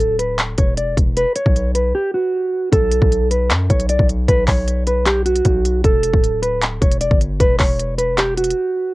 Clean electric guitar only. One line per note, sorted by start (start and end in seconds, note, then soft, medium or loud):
0.00 0.16 A4 loud
0.19 0.36 B4 medium
0.58 0.76 C#5 medium
0.78 0.95 D5 medium
1.17 1.34 B4 loud
1.36 1.73 C#5 medium
1.75 1.92 B4 medium
1.95 2.12 G4 loud
2.14 2.69 F#4 medium
2.73 3.27 A4 loud
3.31 3.48 B4 medium
3.70 3.87 C#5 medium
3.90 4.07 D5 medium
4.28 4.46 B4 loud
4.48 4.84 C#5 medium
4.87 5.04 B4 medium
5.06 5.24 G4 loud
5.26 5.81 F#4 medium
5.85 6.39 A4 loud
6.42 6.60 B4 medium
6.82 6.99 C#5 medium
7.01 7.18 D5 medium
7.40 7.58 B4 loud
7.59 7.96 C#5 medium
7.98 8.16 B4 medium
8.18 8.35 G4 loud
8.37 8.92 F#4 medium